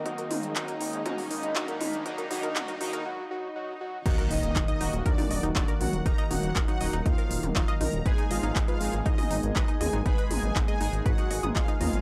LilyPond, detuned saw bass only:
\new Staff \with { instrumentName = "Detuned saw bass" } { \clef bass \time 4/4 \key ees \minor \tempo 4 = 120 aes,,16 r16 aes,,16 aes,,16 r8 aes,,16 aes,,16 aes,16 r16 aes,,16 aes,,16 aes,,16 r16 ees,16 aes,,16 | aes,,16 r8 aes,,16 r8. aes,,16 r2 | ees,,16 r16 ees,,16 ees,,16 ees,,16 r16 ees,,16 ees,,16 ees,16 r16 ees,,16 ees,,16 ees,,16 r16 bes,,16 ees,,16 | ees,,16 r16 ees,,16 ees,,16 ees,,16 r16 ees,,16 ees,,16 ees,16 r16 ees,,16 ees,,16 ees,,16 r16 bes,,16 ees,,16 |
aes,,16 r16 aes,,16 aes,,16 aes,,16 r16 aes,,16 aes,,16 aes,16 r16 aes,,16 aes,,16 aes,,16 r16 ees,16 aes,,16 | aes,,16 r16 aes,,16 aes,,16 aes,,16 r16 aes,,16 aes,,16 aes,16 r16 aes,,16 aes,,16 aes,,16 r16 ees,16 aes,,16 | }